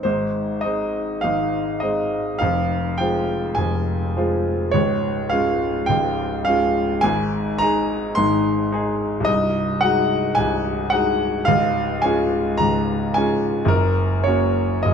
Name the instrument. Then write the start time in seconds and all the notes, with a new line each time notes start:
grand piano
0.03 G#1 G#2 C5
0.61 G#3 C4 D#4 D#5
1.21 G#1 G#2 F5
1.80 G#3 C4 D#4 D#5
2.39 F1 F2 F5
2.98 G#3 C4 F4 G5
3.55 F1 F2 G#5
4.17 G#3 C4 F4
4.71 C#1 C#2 C#5
5.29 G#3 C#4 F4 F5
5.86 C#1 C#2 G5
6.45 G#3 C#4 F5
6.49 F4
7.01 G#1 G#2 G#5
7.58 G#3 D#4 G#4 A#5
8.15 G#1 G#2 C6
8.72 G#3 D#4 G#4
9.20 C2
9.25 C1 D#5
9.81 G#3 D#4 F#4 F#5
10.35 C1 C2 G#5
10.90 G#3 D#4 F#4 F#5
11.45 C#1 C#2 F5
12.02 G#3 C#4 F4 G#5
12.57 C#1 C#2 A#5
13.14 G#3 C#4 F4 G#5
13.65 F#1 F#2 A#4
14.24 A#3 C#4 F#4 C#5
14.83 F#1 F#2 D#5